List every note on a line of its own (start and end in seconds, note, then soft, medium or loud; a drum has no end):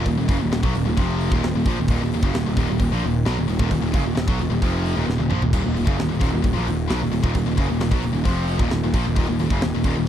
0.05 0.17 D#1 medium
0.05 0.16 D#2 medium
0.05 0.16 A#2 medium
0.05 kick loud
0.05 open hi-hat medium
0.18 0.28 D#1 medium
0.18 0.28 D#2 medium
0.18 0.29 A#2 medium
0.28 0.39 F#1 loud
0.28 0.39 F#2 loud
0.28 0.39 C#3 loud
0.28 kick loud
0.28 open hi-hat medium
0.40 0.53 D#1 medium
0.40 0.51 D#2 medium
0.40 0.51 A#2 medium
0.52 0.63 D#1 medium
0.52 0.63 D#2 medium
0.52 0.62 A#2 medium
0.52 snare loud
0.52 open hi-hat medium
0.63 0.74 B1 medium
0.63 0.74 B2 medium
0.63 0.74 F#3 loud
0.63 kick loud
0.74 0.86 D#1 medium
0.74 0.84 D#2 medium
0.74 0.84 A#2 medium
0.74 open hi-hat medium
0.85 0.97 D#1 loud
0.85 0.96 D#2 medium
0.85 0.97 A#2 medium
0.97 1.30 F1 loud
0.97 1.31 F2 medium
0.97 1.31 C3 loud
0.97 1.31 F3 loud
0.97 kick loud
0.97 open hi-hat medium
1.21 open hi-hat medium
1.31 1.42 D#1 medium
1.31 1.42 D#2 medium
1.31 1.43 A#2 loud
1.31 kick loud
1.43 1.54 D#1 medium
1.43 1.54 D#2 medium
1.43 1.54 A#2 medium
1.43 snare loud
1.43 open hi-hat medium
1.55 1.65 D#1 medium
1.55 1.66 D#2 medium
1.55 1.66 A#2 medium
1.66 1.77 A#1 medium
1.66 1.78 A#2 loud
1.66 1.78 F3 loud
1.66 kick loud
1.66 open hi-hat medium
1.79 1.88 D#1 medium
1.79 1.89 D#2 medium
1.79 1.90 A#2 medium
1.88 1.99 D#1 medium
1.88 2.00 D#2 medium
1.88 kick loud
1.88 open hi-hat medium
1.92 2.01 A#2 loud
2.02 2.12 D#1 medium
2.02 2.12 D#2 medium
2.02 2.13 A#2 medium
2.12 2.22 D#1 medium
2.12 2.23 D#2 medium
2.12 2.24 A#2 medium
2.12 open hi-hat medium
2.23 2.33 F#1 loud
2.23 2.34 F#2 medium
2.23 2.35 C#3 loud
2.23 kick loud
2.34 2.45 D#1 medium
2.34 2.45 D#2 medium
2.34 2.45 A#2 medium
2.34 snare loud
2.34 open hi-hat loud
2.46 2.56 D#1 medium
2.46 2.56 D#2 medium
2.46 2.56 A#2 medium
2.57 2.68 D#1 medium
2.57 2.68 D#2 medium
2.57 2.68 A#2 loud
2.57 kick loud
2.57 open hi-hat medium
2.70 2.79 D#1 medium
2.70 2.79 D#2 medium
2.70 2.80 A#2 medium
2.80 2.91 D#1 medium
2.80 2.92 D#2 medium
2.80 2.91 A#2 medium
2.80 kick medium
2.80 open hi-hat medium
2.92 3.02 A#1 loud
2.92 3.02 A#2 medium
2.92 3.03 F3 medium
3.03 3.24 D#1 medium
3.03 3.22 D#2 medium
3.03 3.22 A#2 medium
3.03 open hi-hat medium
3.25 3.36 B1 loud
3.25 3.36 B2 medium
3.25 3.37 F#3 loud
3.25 snare loud
3.25 open hi-hat medium
3.38 3.48 D#1 medium
3.38 3.46 D#2 medium
3.38 3.47 A#2 medium
3.48 3.59 D#1 medium
3.48 3.58 D#2 medium
3.48 3.60 A#2 medium
3.48 open hi-hat medium
3.59 3.70 D#1 medium
3.59 3.69 D#2 medium
3.59 3.70 A#2 loud
3.59 kick loud
3.70 3.81 D#1 medium
3.70 3.81 D#2 medium
3.70 3.81 A#2 medium
3.70 kick medium
3.70 open hi-hat medium
3.82 3.93 D#1 medium
3.82 3.93 D#2 medium
3.82 3.94 A#2 medium
3.93 4.05 F#1 loud
3.93 4.04 F#2 loud
3.93 4.05 C#3 loud
3.93 kick loud
3.93 open hi-hat medium
4.05 4.15 D#1 medium
4.05 4.14 D#2 medium
4.05 4.14 A#2 medium
4.15 4.27 D#1 medium
4.15 4.27 D#2 medium
4.15 4.27 A#2 medium
4.15 snare loud
4.15 open hi-hat medium
4.27 4.39 B1 medium
4.27 4.39 B2 medium
4.27 4.39 F#3 loud
4.27 kick loud
4.39 4.50 D#1 medium
4.39 4.49 D#2 medium
4.39 4.49 A#2 medium
4.39 open hi-hat medium
4.50 4.61 D#1 medium
4.50 4.62 D#2 medium
4.50 4.62 A#2 medium
4.62 4.94 F1 loud
4.62 4.96 F2 loud
4.62 4.96 C3 loud
4.62 4.96 F3 loud
4.62 kick loud
4.62 open hi-hat medium
4.86 open hi-hat medium
4.96 5.07 D#1 loud
4.96 5.05 D#2 loud
4.96 5.06 A#2 loud
5.07 5.18 D#1 medium
5.07 5.17 D#2 medium
5.07 5.17 A#2 medium
5.07 snare medium
5.18 5.30 D#1 medium
5.18 5.30 D#2 medium
5.18 5.28 A#2 medium
5.18 high tom medium
5.30 5.41 A#1 medium
5.30 5.40 A#2 loud
5.30 5.41 F3 loud
5.30 mid tom medium
5.40 5.52 D#1 medium
5.40 5.52 D#2 medium
5.40 5.52 A#2 medium
5.40 floor tom loud
5.53 5.64 D#1 medium
5.53 5.62 D#2 loud
5.53 5.62 A#2 loud
5.53 kick loud
5.53 crash loud
5.63 5.76 D#1 medium
5.63 5.73 D#2 medium
5.63 5.74 A#2 medium
5.74 5.85 D#2 medium
5.74 5.86 A#2 medium
5.74 open hi-hat medium
5.79 5.86 D#1 medium
5.85 5.98 F#1 loud
5.85 5.97 F#2 medium
5.85 5.98 C#3 medium
5.85 kick loud
5.98 6.08 D#2 medium
5.98 6.08 A#2 medium
5.98 snare loud
5.98 open hi-hat medium
6.03 6.11 D#1 medium
6.09 6.21 D#1 medium
6.09 6.19 D#2 medium
6.09 6.19 A#2 medium
6.20 6.32 D#1 medium
6.20 6.30 D#2 medium
6.20 6.30 A#2 loud
6.20 kick loud
6.20 open hi-hat medium
6.31 6.43 D#1 medium
6.31 6.41 D#2 medium
6.31 6.41 A#2 medium
6.35 6.45 D#2 medium
6.35 6.45 A#2 medium
6.42 6.55 D#1 medium
6.42 6.55 D#2 medium
6.42 6.52 A#2 medium
6.42 kick medium
6.42 open hi-hat medium
6.53 6.67 A#1 loud
6.53 6.65 A#2 medium
6.53 6.66 F3 loud
6.67 6.89 D#1 medium
6.67 6.85 D#2 medium
6.67 6.85 A#2 medium
6.67 open hi-hat medium
6.88 7.01 B1 medium
6.88 7.00 B2 loud
6.88 7.00 F#3 loud
6.88 snare loud
6.88 open hi-hat medium
7.00 7.12 D#1 medium
7.00 7.10 D#2 medium
7.00 7.10 A#2 medium
7.12 7.23 D#1 medium
7.12 7.21 D#2 medium
7.12 7.23 A#2 medium
7.12 open hi-hat medium
7.23 7.34 D#1 loud
7.23 7.33 D#2 medium
7.23 7.34 A#2 loud
7.23 kick loud
7.35 7.45 D#1 medium
7.35 7.45 D#2 medium
7.35 7.46 A#2 medium
7.35 kick loud
7.35 open hi-hat medium
7.46 7.57 D#1 medium
7.46 7.57 D#2 medium
7.46 7.58 A#2 medium
7.57 7.69 F#1 loud
7.57 7.68 F#2 loud
7.57 7.69 C#3 loud
7.57 kick loud
7.57 open hi-hat medium
7.69 7.80 D#1 medium
7.69 7.80 D#2 medium
7.69 7.80 A#2 medium
7.80 7.91 D#1 medium
7.80 7.92 D#2 medium
7.80 7.91 A#2 medium
7.80 snare loud
7.80 open hi-hat medium
7.91 8.02 B1 medium
7.91 8.01 B2 medium
7.91 8.03 F#3 loud
7.91 kick loud
8.01 8.12 D#1 medium
8.01 8.12 D#2 medium
8.01 8.12 A#2 medium
8.01 open hi-hat medium
8.13 8.25 D#1 medium
8.13 8.23 D#2 medium
8.13 8.24 A#2 medium
8.24 8.58 F1 loud
8.24 8.58 F2 medium
8.24 8.59 C3 medium
8.24 8.59 F3 loud
8.24 kick loud
8.24 open hi-hat medium
8.48 open hi-hat medium
8.59 8.71 D#1 medium
8.59 8.70 D#2 loud
8.59 8.70 A#2 loud
8.59 kick loud
8.70 8.82 D#1 medium
8.70 8.82 D#2 medium
8.70 8.83 A#2 medium
8.70 snare loud
8.70 open hi-hat medium
8.83 8.93 D#1 medium
8.83 8.95 D#2 medium
8.83 8.93 A#2 medium
8.94 9.05 A#1 medium
8.94 9.04 A#2 loud
8.94 9.05 F3 loud
8.94 kick loud
8.94 open hi-hat medium
9.05 9.16 D#1 medium
9.05 9.15 D#2 medium
9.05 9.15 A#2 medium
9.16 9.28 D#1 loud
9.16 9.27 D#2 medium
9.16 9.27 A#2 loud
9.16 kick loud
9.16 open hi-hat medium
9.28 9.40 D#1 medium
9.28 9.39 D#2 medium
9.28 9.39 A#2 medium
9.39 9.50 D#1 medium
9.39 9.51 D#2 medium
9.39 9.52 A#2 medium
9.39 open hi-hat medium
9.50 9.62 F#1 loud
9.50 9.62 F#2 medium
9.50 9.62 C#3 medium
9.50 kick loud
9.61 9.74 D#1 medium
9.61 9.73 D#2 medium
9.61 9.74 A#2 medium
9.61 snare loud
9.61 open hi-hat medium
9.75 9.84 D#1 medium
9.75 9.84 D#2 medium
9.75 9.84 A#2 medium
9.84 9.95 D#1 loud
9.84 9.96 D#2 loud
9.84 9.96 A#2 loud
9.84 kick loud
9.84 open hi-hat medium
9.97 10.06 D#1 medium
9.97 10.07 D#2 medium
9.97 10.07 A#2 medium